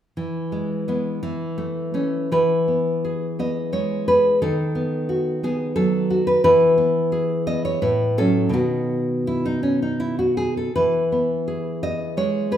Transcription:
nylon-string guitar
0.17 E3
0.52 G#3
0.88 G#3 B3
1.23 E3
1.58 A3
1.94 A3 C#4
2.32 E3 B4
2.68 B3
3.05 G#4
3.39 B3 D#5
3.73 G#3 C#5
4.08 G#4 B4
4.42 D#3 A4
4.75 B3
5.09 F#4
5.43 B3 G#4
5.76 F#3 A4
6.10 F#4
6.27 B4
6.44 E3 B4
6.78 B3
7.12 G#4
7.47 B3 D#5
7.65 C#5
7.82 A2 B4
8.18 F#3 C#4 A4
8.49 B2 D#3 B3
8.54 F#4
9.27 E4
9.46 D#4
9.63 C#4
9.82 D#4
10.00 E4
10.19 F#4
10.37 G#4
10.57 A4
10.76 E3 B4
11.12 B3
11.48 G#4
11.83 B3 D#5
12.17 G#3 C#5
12.52 G#4 B4

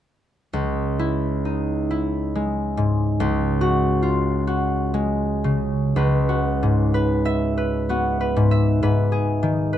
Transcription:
harp
0.53 C#2
0.99 E4
1.45 D#4
1.91 E4
2.35 G#3
2.77 G#2
3.20 C#2
3.61 F#4
4.03 F4
4.47 F#4
4.94 G#3
5.44 C#3
5.96 C#2 B4
6.29 F#4
6.63 G#2
6.94 B4
7.25 E5
7.57 B4
7.89 B3 F#4
8.21 B4
8.36 G#2
8.51 E5
8.83 G#2 B4
9.12 G#4
9.43 D#3
9.73 B4

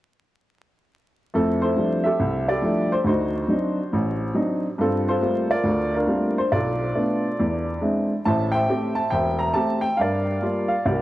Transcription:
upright piano
1.34 F2 A3 C4 E4 A4
1.62 E4 A4 C5
1.76 F3 G3 A3 D4 E4
2.04 G4 A4 E5
2.20 C2
2.48 G4 A4 D5
2.62 F3 G3 A3 D4 E4
2.92 C5
3.04 D2 D#4 F#4 C5
3.48 F#3 C4 D4 D#4
3.93 A1
4.35 F#3 C4 D4 D#4
4.78 G2 C4 F4 A4
5.09 F4 A4 C5
5.21 G3 A3 A#3 C4 F4
5.51 F4 A#4 D5
5.64 D2
5.94 D4 F4 A#4
6.07 G3 A3 A#3 C4 F4
6.38 C5
6.52 B1 F4 A4 D5
6.94 A3 B3 D4
7.39 E2
7.81 G#3 C4 D4 E4
8.25 A1 A2 C5 E5 A5
8.52 C5 E5 G5
8.69 A3 C4 G4
8.95 A5
9.10 E1 C5 E5 G5
9.39 A#5
9.54 A3 C4 G4 A5
9.81 G5
9.97 G2 F5
10.01 A#4 D5
10.42 G3 A#3 F4
10.68 F5
10.85 C2 G4 A#4 D5

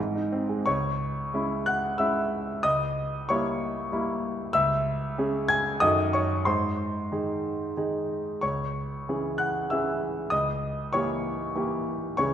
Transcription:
grand piano
Already playing: G#2
0.15 D#4
0.32 C4
0.49 G#3
0.66 C#2 C#5 C#6
1.34 G#3 C#4 E4
1.66 F#5 F#6
1.98 G#3 C#4 E4 E5 E6
2.63 C#2 D#5 D#6
3.29 G3 A#3 E4 C#5 C#6
3.92 G3 A#3 E4
4.53 C#2 E5 E6
5.18 G#3 C#4 G#4
5.48 G#5 G#6
5.80 F#2 D#3 D#4 A4 D#5 D#6
6.13 C#5 C#6
6.45 G#2 C5 C6
7.12 D#3 D#4 G#4
7.77 D#3 D#4 G#4
8.41 C#2 C#5 C#6
9.09 E3 C#4 G#4
9.38 F#5 F#6
9.70 E3 C#4 G#4 E5 E6
10.30 C#2 D#5 D#6
10.93 E3 A#3 G4 C#5 C#6
11.55 E3 A#3 G4
12.17 C#2 E3 C#4 G#4 C#5 C#6

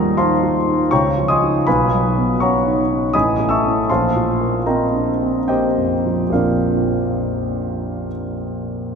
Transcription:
grand piano
Already playing: D#2 F3 G3 A#4 D#5 G5 A#5
0.17 D#4 C5 F5 A5 C6
0.43 F4
0.66 D#4
0.91 C#2 C#5 G5 A#5 C#6
1.17 F3
1.28 D#5 G#5 C6 D#6
1.43 D#4 F4
1.67 B1 B4 F5 G#5 B5
1.94 F#3
2.18 B3
2.40 C#4 C#5 F#5 A#5 C#6
2.67 D#4
2.92 C#4
3.14 A1 D#5 G#5 B5 D#6
3.40 A3
3.49 E5 A5 C#6 E6
3.66 C#4 E4
3.89 A#1 C5 F5 A5 C6
4.16 F3
4.41 A#3
4.66 C4 A#4 D#5 G5 A#5
4.95 D4
5.22 C4
5.48 A#3 G4 C5 D#5 G5
5.78 F2
6.06 F3
6.29 A#1 F3 A#3 C4 D4 A#4 F5
6.34 F4 D5

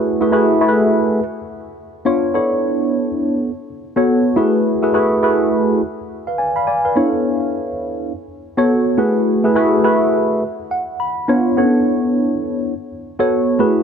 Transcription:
tine electric piano
Already playing: A3 E4 F#4 G#4 B4
0.21 A3 E4 F#4 G#4 B4
0.32 A3 E4 F#4 G#4 B4
0.61 A3 E4 F#4 G#4 A4
0.69 B4
2.05 B3 D4 F4 C#5
2.34 B3 D4 E4 A4 C#5
3.96 B3 F#4 A4 C#5
4.36 A3 E4 F#4 G#4 B4
4.82 A3 E4 F#4 G#4 B4
4.94 A3 E4 F#4 G#4 B4
5.23 A3 E4 F#4 G#4 B4
6.27 B4 F5
6.38 D5 G#5
6.56 F5 B5
6.67 D5 G#5
6.85 B4 F5
6.96 B3 D4 E4 A4 C#5
8.57 B3 F#4 A4 C#5
8.97 A3 E4 F#4 G#4 B4
9.44 A3 E4 F#4 G#4 B4
9.55 A3 E4 F#4 G#4 B4
9.84 A3 E4 F#4 G#4 B4
10.71 F#5
11.00 B5
11.28 B3 D4 F4 C#5
11.57 B3 C#4 E4 A4 C#5
11.64 D4
13.19 B3 F#4 A4 C#5
13.59 A3 E4 F#4 G#4 B4

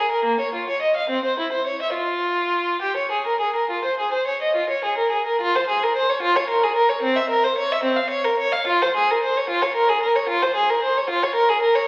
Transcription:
violin
Already playing: G#4
0.11 A#4
0.25 A#3
0.40 C#5
0.55 F4
0.69 C#5
0.82 D#5
0.97 F5
1.10 C4
1.25 C5
1.39 E4
1.53 C5
1.67 C#5
1.82 E5
1.94 F4
2.82 G4
2.97 C#5
3.11 G#4
3.27 A#4
3.41 G#4
3.56 A#4
3.70 F4
3.85 C5
4.00 G#4
4.14 C5
4.27 C#5
4.42 D#5
4.56 F4
4.70 C#5
4.85 G#4
4.98 A#4
5.11 G#4
5.27 A#4
5.41 F4
5.56 C5
5.69 G#4
5.83 A#4
5.97 C5
6.10 C#5
6.22 F4
6.36 C#5
6.50 A#4
6.63 G#4
6.76 A#4
6.89 C#5
7.02 C4
7.17 E5
7.30 A#4
7.44 C5
7.58 C#5
7.72 E5
7.84 C4
7.96 F5
8.10 C#5
8.25 A#4
8.40 C#5
8.52 F5
8.67 F4
8.82 C5
8.96 G#4
9.11 A#4
9.23 C5
9.37 C#5
9.50 F4
9.62 C#5
9.75 A#4
9.89 G#4
10.03 A#4
10.16 C#5
10.29 F4
10.43 C5
10.56 G#4
10.70 A#4
10.83 C5
10.97 C#5
11.10 F4
11.23 C#5
11.35 A#4
11.49 G#4
11.62 A#4
11.75 C#5

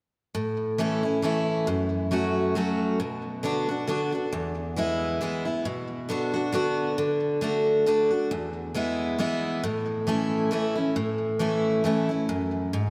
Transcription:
steel-string acoustic guitar
0.35 A2
0.78 E3 A3 C#4 E4
1.03 C#4 E4
1.22 E3 A3 C#4 E4
1.67 F#2
2.11 F#3 A3 C#4 F#4
2.55 F#3 A3 C#4 F#4
3.00 B2
3.43 D3 B3 D4 F#4
3.69 D4 F#4
3.88 D3 B3 D4 F#4
4.12 D4 F#4
4.33 E2
4.76 E3 G#3 B3 E4
5.21 E3 G#3 B3 E4
5.45 B3 E4
5.65 B2
6.09 D3 B3 D4 F#4
6.34 D4 F#4
6.52 D3 B3 D4 F#4
6.98 D3
7.41 D3 A3 D4 F#4
7.86 D3 A3 D4 F#4
8.11 D4 F#4
8.31 E2
8.74 E3 G#3 B3 E4
9.19 E3 G#3 B3 E4
9.64 A2
10.07 E3 A3 C#4 E4
10.51 E3 A3 C#4 E4
10.76 C#4 E4
10.96 A2
11.39 E3 A3 C#4 E4
11.84 E3 A3 C#4 E4
12.09 C#4 E4
12.29 F#2
12.73 G#2

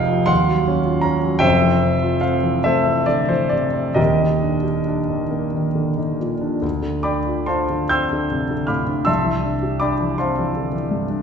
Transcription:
grand piano
Already playing: F1 F2 F3 D#4 G4 F5 G5
0.07 F3
0.26 D#2 F5 F#5 C6
0.47 F#3
0.68 C#4
0.85 F4
1.01 C#4 A#5
1.24 F#3
1.39 F1 F2 C5 E5 G5
1.62 E3
1.82 C4
2.03 F4
2.21 C4 F5
2.44 E3
2.64 A3 A4 C5 E5
2.87 E3
3.06 D3 D5
3.29 E3 C5
3.49 C3 D5
3.74 C4
3.94 D#1 D#2 G4 A#4 D#5
4.20 D#3
4.42 D4
4.63 G4
4.87 D4
5.10 D#3
5.31 A#3
5.54 D#3
5.75 D3
5.97 D#3
6.21 A#2
6.41 D4
6.62 D2
6.82 D3
7.03 D4 D5 G5 B5 D6
7.27 F4
7.46 D4 C5 F5 A5 C6
7.70 D3
7.89 C4 G5 C6 E6 G6
8.13 D3
8.31 C3
8.51 D3
8.67 A2 F5 B5 D6 F6
8.88 D4
9.05 C2 E5 A5 C6 E6
9.24 E3
9.44 D4
9.63 G4
9.80 D4 D5 G5 B5 D6
10.01 E3
10.18 C4 C5 F5 A5 C6
10.39 E3
10.57 D3
10.73 E3
10.91 G2
11.09 D4

